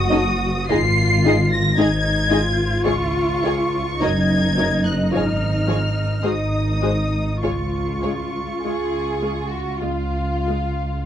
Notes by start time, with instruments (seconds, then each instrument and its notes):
Already playing: double bass section F#1, cello section F#4, violin section D#6
0.10 viola section C#4 D#4, violin section A4 D#5
0.68 double bass section G#1, viola section G#3 D#4, cello section F4, violin section G#4 D#5 C7
1.25 viola section G#3 D#4, violin section G#4 D#5
1.52 violin section A#6
1.77 double bass section G#1, viola section G#3 D#4, cello section D#4, violin section G#4 D#5 G#6
2.30 viola section G#3 D#4, cello section F4, violin section G#4 D#5
2.84 double bass section C#2, viola section G#3 F4, violin section G#4 C#5 C#6
3.43 viola section G#3 F4, violin section G#4 C#5
4.01 double bass section F#1, viola section F#3 D#4, cello section D#4, violin section A#4 D#5 G#6
4.57 viola section F#3 D#4, violin section A#4 D#5
4.85 violin section F#6
5.12 double bass section G#1, viola section F3 F4, violin section G#4 C#5 F6
5.67 viola section F3 F4, violin section G#4 C#5
6.23 double bass section G#1, viola section G#3 F#4, cello section D#4, violin section G#4 C5 D#6
6.82 viola section G#3 F#4, violin section G#4 C5
7.41 double bass section C#2, viola section G#3 F4, cello section F4, violin section G#4 C#5 C#6
8.02 viola section G#3 F4, violin section G#4 C#5
8.62 double bass section C#2, viola section G#3 F4, violin section G#4
9.23 viola section G#3 F4
9.49 violin section F#4
9.81 double bass section C#2, viola section G#3 F4, violin section F4 F5
10.48 viola section G#3 F4